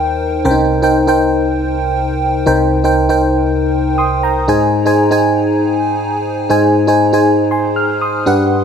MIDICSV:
0, 0, Header, 1, 2, 480
1, 0, Start_track
1, 0, Tempo, 504202
1, 430, Time_signature, 4, 2, 24, 8
1, 8228, End_track
2, 0, Start_track
2, 0, Title_t, "FM electric piano"
2, 0, Program_c, 0, 5
2, 0, Control_c, 0, 64, 127
2, 0, Note_on_c, 0, 39, 75
2, 0, Note_on_c, 0, 51, 72
2, 0, Note_on_c, 0, 63, 89
2, 0, Note_on_c, 0, 70, 80
2, 0, Note_on_c, 0, 72, 80
2, 0, Note_on_c, 0, 79, 99
2, 392, Note_off_c, 0, 39, 0
2, 393, Note_off_c, 0, 51, 0
2, 424, Note_on_c, 0, 61, 69
2, 428, Note_off_c, 0, 70, 0
2, 428, Note_on_c, 0, 70, 83
2, 430, Note_on_c, 0, 36, 77
2, 430, Note_on_c, 0, 48, 76
2, 433, Note_off_c, 0, 72, 0
2, 433, Note_on_c, 0, 72, 82
2, 435, Note_off_c, 0, 79, 0
2, 435, Note_on_c, 0, 79, 95
2, 443, Control_c, 0, 64, 0
2, 448, Note_off_c, 0, 63, 0
2, 483, Note_on_c, 0, 63, 87
2, 485, Note_off_c, 0, 61, 0
2, 617, Control_c, 0, 64, 127
2, 771, Note_off_c, 0, 70, 0
2, 772, Note_off_c, 0, 63, 0
2, 773, Note_off_c, 0, 72, 0
2, 775, Note_off_c, 0, 79, 0
2, 784, Note_on_c, 0, 63, 86
2, 788, Note_on_c, 0, 70, 80
2, 791, Note_on_c, 0, 72, 75
2, 795, Note_on_c, 0, 79, 98
2, 1009, Note_off_c, 0, 63, 0
2, 1013, Note_off_c, 0, 70, 0
2, 1017, Note_off_c, 0, 72, 0
2, 1021, Note_off_c, 0, 79, 0
2, 1021, Note_on_c, 0, 63, 85
2, 1024, Note_on_c, 0, 70, 77
2, 1028, Note_on_c, 0, 72, 83
2, 1033, Note_on_c, 0, 79, 99
2, 1937, Note_off_c, 0, 63, 0
2, 1939, Note_off_c, 0, 70, 0
2, 1941, Note_off_c, 0, 72, 0
2, 1943, Note_off_c, 0, 79, 0
2, 2312, Note_off_c, 0, 36, 0
2, 2312, Note_off_c, 0, 48, 0
2, 2342, Note_on_c, 0, 63, 82
2, 2347, Note_on_c, 0, 70, 77
2, 2349, Note_on_c, 0, 36, 76
2, 2349, Note_on_c, 0, 48, 73
2, 2351, Note_on_c, 0, 72, 82
2, 2355, Note_on_c, 0, 79, 93
2, 2688, Note_off_c, 0, 63, 0
2, 2690, Note_off_c, 0, 70, 0
2, 2692, Note_off_c, 0, 72, 0
2, 2695, Note_off_c, 0, 79, 0
2, 2703, Note_on_c, 0, 63, 80
2, 2706, Note_on_c, 0, 70, 74
2, 2709, Note_on_c, 0, 72, 77
2, 2713, Note_on_c, 0, 79, 91
2, 2931, Note_off_c, 0, 63, 0
2, 2936, Note_off_c, 0, 70, 0
2, 2938, Note_off_c, 0, 72, 0
2, 2940, Note_off_c, 0, 79, 0
2, 2943, Note_on_c, 0, 63, 85
2, 2946, Note_on_c, 0, 70, 79
2, 2949, Note_on_c, 0, 72, 77
2, 2953, Note_on_c, 0, 79, 93
2, 3788, Note_on_c, 0, 87, 67
2, 3792, Note_off_c, 0, 79, 0
2, 3794, Note_on_c, 0, 84, 56
2, 3858, Note_off_c, 0, 63, 0
2, 3860, Note_off_c, 0, 70, 0
2, 3862, Note_off_c, 0, 72, 0
2, 4017, Note_off_c, 0, 87, 0
2, 4020, Note_off_c, 0, 84, 0
2, 4030, Note_on_c, 0, 82, 68
2, 4036, Note_on_c, 0, 79, 56
2, 4232, Note_off_c, 0, 36, 0
2, 4232, Note_off_c, 0, 48, 0
2, 4264, Note_on_c, 0, 63, 82
2, 4268, Note_on_c, 0, 68, 80
2, 4269, Note_on_c, 0, 44, 73
2, 4272, Note_on_c, 0, 72, 79
2, 4275, Note_on_c, 0, 80, 90
2, 4284, Control_c, 0, 64, 0
2, 4435, Control_c, 0, 64, 127
2, 4486, Note_off_c, 0, 82, 0
2, 4490, Note_off_c, 0, 79, 0
2, 4609, Note_off_c, 0, 63, 0
2, 4611, Note_off_c, 0, 68, 0
2, 4613, Note_off_c, 0, 72, 0
2, 4615, Note_off_c, 0, 80, 0
2, 4622, Note_on_c, 0, 63, 82
2, 4626, Note_on_c, 0, 68, 78
2, 4630, Note_on_c, 0, 72, 77
2, 4633, Note_on_c, 0, 80, 96
2, 4852, Note_off_c, 0, 63, 0
2, 4856, Note_off_c, 0, 68, 0
2, 4858, Note_off_c, 0, 72, 0
2, 4860, Note_off_c, 0, 80, 0
2, 4863, Note_on_c, 0, 63, 88
2, 4867, Note_on_c, 0, 68, 81
2, 4871, Note_on_c, 0, 72, 75
2, 4875, Note_on_c, 0, 80, 98
2, 5779, Note_off_c, 0, 63, 0
2, 5780, Note_off_c, 0, 68, 0
2, 5782, Note_off_c, 0, 72, 0
2, 5784, Note_off_c, 0, 80, 0
2, 6152, Note_off_c, 0, 44, 0
2, 6184, Note_on_c, 0, 63, 84
2, 6188, Note_on_c, 0, 68, 78
2, 6190, Note_on_c, 0, 44, 74
2, 6191, Note_on_c, 0, 72, 77
2, 6195, Note_on_c, 0, 80, 98
2, 6529, Note_off_c, 0, 63, 0
2, 6531, Note_off_c, 0, 68, 0
2, 6533, Note_off_c, 0, 72, 0
2, 6535, Note_off_c, 0, 80, 0
2, 6543, Note_on_c, 0, 63, 88
2, 6547, Note_on_c, 0, 68, 77
2, 6551, Note_on_c, 0, 72, 81
2, 6554, Note_on_c, 0, 80, 90
2, 6775, Note_off_c, 0, 63, 0
2, 6777, Note_off_c, 0, 68, 0
2, 6779, Note_off_c, 0, 72, 0
2, 6780, Note_off_c, 0, 80, 0
2, 6785, Note_on_c, 0, 63, 85
2, 6789, Note_on_c, 0, 68, 80
2, 6793, Note_on_c, 0, 72, 81
2, 6796, Note_on_c, 0, 80, 94
2, 7145, Note_off_c, 0, 80, 0
2, 7150, Note_on_c, 0, 84, 61
2, 7157, Note_on_c, 0, 80, 57
2, 7378, Note_off_c, 0, 84, 0
2, 7382, Note_off_c, 0, 80, 0
2, 7389, Note_on_c, 0, 89, 68
2, 7618, Note_off_c, 0, 89, 0
2, 7630, Note_on_c, 0, 87, 65
2, 7635, Note_on_c, 0, 84, 54
2, 7700, Note_off_c, 0, 63, 0
2, 7702, Note_off_c, 0, 68, 0
2, 7703, Note_off_c, 0, 72, 0
2, 7832, Note_off_c, 0, 44, 0
2, 7865, Note_on_c, 0, 62, 90
2, 7869, Note_on_c, 0, 67, 85
2, 7871, Note_on_c, 0, 43, 75
2, 7873, Note_on_c, 0, 71, 79
2, 7877, Note_on_c, 0, 78, 94
2, 7881, Control_c, 0, 64, 0
2, 8050, Control_c, 0, 64, 127
2, 8086, Note_off_c, 0, 87, 0
2, 8089, Note_off_c, 0, 84, 0
2, 8228, Note_off_c, 0, 43, 0
2, 8228, Note_off_c, 0, 62, 0
2, 8228, Note_off_c, 0, 67, 0
2, 8228, Note_off_c, 0, 71, 0
2, 8228, Note_off_c, 0, 78, 0
2, 8228, End_track
0, 0, End_of_file